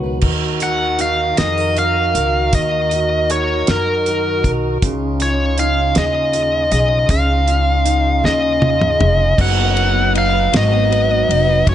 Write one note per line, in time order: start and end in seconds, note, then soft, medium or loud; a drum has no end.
0.00 0.21 C#2 medium
0.00 0.31 B2 medium
0.00 0.19 D#3 medium
0.00 0.20 F#3 medium
0.00 1.41 F#3 soft
0.00 0.20 B3 medium
0.00 0.61 F#4 soft
0.00 0.31 B4 soft
0.21 1.34 D#2 medium
0.21 4.78 D#3 medium
0.21 2.53 D#3 medium
0.21 4.78 D#4 medium
0.21 4.78 F#4 medium
0.21 4.78 A#4 medium
0.21 kick medium
0.21 crash medium
0.60 1.75 F#4 medium
0.60 0.98 F#5 medium
0.60 closed hi-hat soft
0.99 3.30 D#4 soft
0.99 1.38 F5 medium
0.99 closed hi-hat medium
1.37 2.11 F2 medium
1.37 1.58 G#4 medium
1.37 1.78 D#5 medium
1.37 snare medium
1.37 closed hi-hat medium
1.58 2.14 A#4 soft
1.76 2.91 F#4 medium
1.76 2.57 F5 medium
1.76 closed hi-hat soft
2.15 2.51 C#2 medium
2.15 3.68 A#4 medium
2.15 closed hi-hat medium
2.53 3.64 D#2 medium
2.53 4.83 D#3 medium
2.53 3.31 D#5 medium
2.53 kick loud
2.53 closed hi-hat medium
2.91 4.07 F#4 medium
2.91 closed hi-hat medium
3.30 5.24 D#4 medium
3.30 3.70 C#5 medium
3.30 closed hi-hat medium
3.67 4.41 F#2 medium
3.67 4.44 A#4 medium
3.67 4.51 A#4 medium
3.67 snare medium
3.67 closed hi-hat medium
4.06 4.91 F#4 medium
4.06 closed hi-hat soft
4.44 4.80 B1 medium
4.44 4.90 A#4 medium
4.44 kick medium
4.44 closed hi-hat medium
4.82 5.92 C#2 medium
4.82 9.35 C#3 medium
4.82 7.09 C#3 medium
4.82 9.35 C#4 medium
4.82 9.35 D#4 medium
4.82 9.35 F4 medium
4.82 kick loud
4.82 closed hi-hat medium
5.20 6.32 F4 medium
5.20 5.56 C#5 medium
5.20 closed hi-hat soft
5.58 7.85 D#4 medium
5.58 5.98 F5 medium
5.58 closed hi-hat medium
5.95 6.68 D#2 medium
5.95 6.71 G#4 medium
5.95 6.71 D#5 medium
5.95 snare loud
5.95 closed hi-hat medium
6.33 7.47 F4 medium
6.33 closed hi-hat soft
6.72 7.07 B1 medium
6.72 8.22 G#4 medium
6.72 7.07 D#5 medium
6.72 closed hi-hat medium
7.09 8.19 C#2 loud
7.09 9.39 C#3 medium
7.09 8.58 F5 medium
7.09 kick loud
7.09 closed hi-hat medium
7.48 8.61 F4 medium
7.48 closed hi-hat soft
7.85 9.56 D#4 medium
7.85 closed hi-hat medium
8.23 8.96 D#2 medium
8.23 8.98 G#4 medium
8.23 9.43 D#5 medium
8.23 snare soft
8.62 9.46 F4 medium
8.62 high tom medium
8.81 mid tom medium
9.00 9.37 F1 medium
9.00 9.46 G#4 medium
9.00 mid tom medium
9.38 10.49 F#1 medium
9.38 10.51 F#3 medium
9.38 11.75 F#3 medium
9.38 11.64 B3 medium
9.38 11.75 D#4 medium
9.38 10.12 F#5 medium
9.38 kick loud
9.38 crash medium
9.56 9.93 B3 medium
9.76 10.31 B4 medium
9.76 ride soft
9.94 10.69 B3 medium
10.14 11.29 D#4 medium
10.14 ride medium
10.18 10.56 F5 medium
10.32 10.89 B4 medium
10.52 11.25 G#1 medium
10.52 11.65 F#3 medium
10.52 snare loud
10.52 ride medium
10.57 11.69 D#5 medium
10.70 11.09 B3 medium
10.90 11.47 B4 medium
10.90 ride soft
11.10 11.74 B3 medium
11.29 11.65 F1 medium
11.29 11.75 D#4 medium
11.29 ride soft
11.48 11.74 B4 medium
11.66 11.75 F#1 loud
11.66 11.75 F#3 medium
11.66 11.75 C#4 medium
11.66 11.75 F4 medium
11.66 11.75 C#5 medium
11.66 kick loud
11.66 ride medium